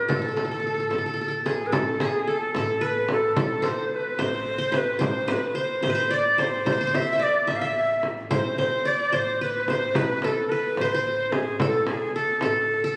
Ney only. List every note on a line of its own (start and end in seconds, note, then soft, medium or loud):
0.07 1.17 A4 medium
1.48 1.68 G#4 medium
1.66 1.75 B4 medium
1.73 2.03 A4 medium
2.01 2.30 G#4 medium
2.29 2.54 A4 medium
2.55 2.85 A4 medium
2.83 3.10 B4 medium
3.12 3.36 A4 medium
3.38 3.68 A4 medium
3.66 3.96 C5 medium
3.95 4.24 B4 medium
4.22 4.78 C5 medium
4.76 5.02 B4 medium
5.03 5.33 C5 loud
5.31 5.57 B4 medium
5.59 5.83 C5 medium
5.87 6.16 C5 medium
6.14 6.42 D5 medium
6.40 6.66 C5 medium
6.69 6.96 C5 medium
6.95 7.24 E5 loud
7.23 7.52 D5 medium
7.50 7.58 E5 medium
7.56 7.67 F5 medium
7.65 8.04 E5 medium
8.32 8.57 C5 medium
8.60 8.89 C5 medium
8.87 9.16 D5 loud
9.14 9.41 C5 medium
9.41 9.70 B4 medium
9.69 9.98 C5 medium
9.96 10.26 B4 medium
10.25 10.51 A4 medium
10.50 10.79 B4 medium
10.78 10.87 C5 medium
10.86 10.93 B4 medium
10.92 11.34 C5 medium
11.32 11.59 G#4 medium
11.60 11.89 A4 medium
11.88 12.14 G#4 medium
12.15 12.40 A4 medium
12.44 12.94 A4 medium